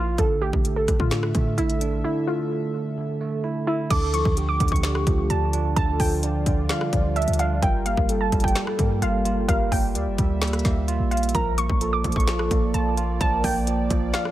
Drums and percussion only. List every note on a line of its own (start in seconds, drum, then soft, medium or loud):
0.18 kick loud
0.18 closed hi-hat medium
0.53 kick loud
0.65 closed hi-hat medium
0.88 kick medium
0.88 cross-stick medium
0.88 closed hi-hat medium
1.00 kick medium
1.11 finger snap medium
1.11 snare loud
1.11 closed hi-hat medium
1.23 cross-stick medium
1.35 kick loud
1.35 closed hi-hat medium
1.58 closed hi-hat medium
1.69 closed hi-hat medium
1.81 closed hi-hat medium
3.90 kick loud
3.90 closed hi-hat medium
3.90 crash loud
4.14 closed hi-hat medium
4.25 kick loud
4.37 closed hi-hat medium
4.60 kick loud
4.60 closed hi-hat medium
4.68 kick loud
4.68 closed hi-hat medium
4.76 closed hi-hat medium
4.83 finger snap medium
4.83 snare loud
4.83 closed hi-hat medium
4.95 cross-stick loud
5.07 kick loud
5.07 closed hi-hat medium
5.30 closed hi-hat medium
5.53 closed hi-hat medium
5.76 kick loud
5.76 closed hi-hat medium
6.00 kick loud
6.00 open hi-hat loud
6.23 closed hi-hat medium
6.46 kick loud
6.46 closed hi-hat medium
6.69 finger snap medium
6.69 snare loud
6.69 closed hi-hat medium
6.81 cross-stick loud
6.93 kick loud
6.93 closed hi-hat medium
7.16 closed hi-hat soft
7.22 closed hi-hat medium
7.28 closed hi-hat medium
7.33 closed hi-hat medium
7.39 closed hi-hat medium
7.62 kick loud
7.62 closed hi-hat medium
7.86 closed hi-hat medium
7.97 kick loud
8.09 closed hi-hat medium
8.32 kick loud
8.32 closed hi-hat medium
8.40 kick loud
8.40 closed hi-hat medium
8.48 closed hi-hat medium
8.55 finger snap medium
8.55 snare loud
8.55 closed hi-hat medium
8.67 cross-stick medium
8.79 kick loud
8.79 closed hi-hat medium
9.02 closed hi-hat medium
9.25 closed hi-hat medium
9.49 kick loud
9.49 closed hi-hat medium
9.72 kick medium
9.72 open hi-hat loud
9.95 closed hi-hat loud
10.18 kick medium
10.18 closed hi-hat medium
10.42 finger snap medium
10.42 snare loud
10.42 closed hi-hat medium
10.47 closed hi-hat medium
10.53 cross-stick loud
10.53 closed hi-hat medium
10.59 closed hi-hat medium
10.65 kick loud
10.65 snare medium
10.65 closed hi-hat medium
10.88 closed hi-hat medium
11.11 closed hi-hat soft
11.17 closed hi-hat medium
11.23 closed hi-hat medium
11.29 closed hi-hat medium
11.35 kick loud
11.35 closed hi-hat medium
11.58 closed hi-hat medium
11.70 kick loud
11.81 closed hi-hat loud
12.04 kick loud
12.04 closed hi-hat medium
12.12 kick medium
12.12 closed hi-hat medium
12.20 closed hi-hat medium
12.28 finger snap medium
12.28 snare loud
12.28 closed hi-hat medium
12.39 cross-stick loud
12.51 kick loud
12.51 closed hi-hat medium
12.74 closed hi-hat medium
12.97 closed hi-hat medium
13.21 kick loud
13.21 closed hi-hat medium
13.44 kick medium
13.44 open hi-hat medium
13.67 closed hi-hat medium
13.90 kick medium
13.90 closed hi-hat medium
14.14 finger snap medium
14.14 snare loud
14.14 closed hi-hat medium
14.25 cross-stick medium